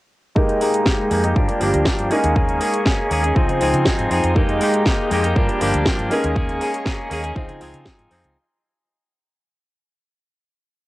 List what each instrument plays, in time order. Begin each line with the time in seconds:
0.35 clean electric guitar G#3 A#3 D#4 G4, grand piano G#3 D#4 G4 A#4, string machine G#3 D#5 G5 A#5, kick
0.49 closed hi-hat
0.60 clean electric guitar G#3 A#3 D#4 G4, open hi-hat
0.74 closed hi-hat
0.85 clean electric guitar G#3 A#3 D#4 G4, kick, snare
1.10 fingered electric bass F2, clean electric guitar G#3 A#3 D#4 G4, open hi-hat
1.23 clean electric guitar A#3 D#4 G4, closed hi-hat
1.35 fingered electric bass G2, clean electric guitar F3 D4 G4, grand piano G3 D4 F4 A#4, string machine G4 F5, kick
1.48 clean electric guitar A#3 D4 G4, closed hi-hat
1.60 fingered electric bass G1, clean electric guitar F3 A#3 D4 G4, open hi-hat
1.74 fingered electric bass D2, closed hi-hat
1.85 clean electric guitar F3 A#3 D4 G4, kick, snare
1.99 fingered electric bass G2, closed hi-hat
2.10 grand piano G#3 C#4 D#4 A#4, clean electric guitar A#3 C#4 G#4, string machine G#4 D#5 C#6, open hi-hat
2.24 fingered electric bass D#2, closed hi-hat
2.35 clean electric guitar A#3 C#4 G#4, kick
2.49 closed hi-hat
2.60 clean electric guitar A#3 C#4 G#4, open hi-hat
2.74 closed hi-hat
2.85 clean electric guitar A#3 C#4 G#4, kick, snare
3.10 fingered electric bass D#2, clean electric guitar A#3 C#4 G#4, open hi-hat
3.23 clean electric guitar C#4 G#4, closed hi-hat
3.35 fingered electric bass C#2, grand piano F3 D#4 C5, clean electric guitar F3 C4 D#4 G#4, string machine F4 C6, kick
3.48 fingered electric bass C#3, clean electric guitar C4 D#4 G#4, closed hi-hat
3.60 fingered electric bass C#2, clean electric guitar F3 C4 D#4 G#4, open hi-hat
3.74 fingered electric bass C#3, closed hi-hat
3.86 clean electric guitar F3 C4 D#4 G#4, kick, snare
3.99 fingered electric bass G#2, closed hi-hat
4.10 fingered electric bass F2, clean electric guitar F3 C4 D#4 G#4, open hi-hat
4.24 fingered electric bass F2, closed hi-hat
4.35 grand piano G#3 D#4 G4 A#4, clean electric guitar G#3 A#3 D#4 G4, string machine G#3 G5 A#5, kick
4.49 closed hi-hat
4.60 clean electric guitar G#3 A#3 D#4 G4, open hi-hat
4.74 closed hi-hat
4.86 clean electric guitar G#3 A#3 D#4 G4, kick, snare
5.10 fingered electric bass F2, clean electric guitar G#3 A#3 D#4 G4, open hi-hat
5.23 clean electric guitar A#3 D#4 G4, closed hi-hat
5.35 clean electric guitar F3 A#3 D4 G4, grand piano G3 D4 F4 A#4, string machine G4 F5, kick
5.48 clean electric guitar A#3 D4 G4, closed hi-hat
5.60 fingered electric bass G1, clean electric guitar F3 A#3 D4 G4, open hi-hat
5.74 fingered electric bass D2, closed hi-hat
5.86 clean electric guitar F3 A#3 D4 G4, kick, snare
5.99 fingered electric bass G2, closed hi-hat
6.10 grand piano G#3 C#4 D#4 A#4, clean electric guitar A#3 C#4 G#4, string machine G#4 D#5 C#6, open hi-hat
6.24 fingered electric bass D#2, closed hi-hat
6.35 clean electric guitar A#3 C#4 G#4, kick
6.49 closed hi-hat
6.60 clean electric guitar A#3 C#4 G#4, open hi-hat
6.74 closed hi-hat
6.85 clean electric guitar A#3 C#4 G#4, kick, snare
7.10 fingered electric bass D#2, clean electric guitar A#3 C#4 G#4, open hi-hat
7.23 clean electric guitar C#4 G#4, closed hi-hat
7.35 fingered electric bass C#2, clean electric guitar F3 C4 D#4 G#4, grand piano F3 D#4 C5, string machine F4 C6, kick
7.48 fingered electric bass C#3, clean electric guitar C4 D#4 G#4, closed hi-hat
7.60 fingered electric bass C#2, clean electric guitar F3 C4 D#4 G#4, open hi-hat
7.74 fingered electric bass C#3, closed hi-hat
7.85 clean electric guitar F3 C4 D#4 G#4, kick, snare
7.99 fingered electric bass G#2, closed hi-hat
8.10 fingered electric bass F2, clean electric guitar F3 C4 D#4 G#4, open hi-hat
8.24 fingered electric bass C#2, closed hi-hat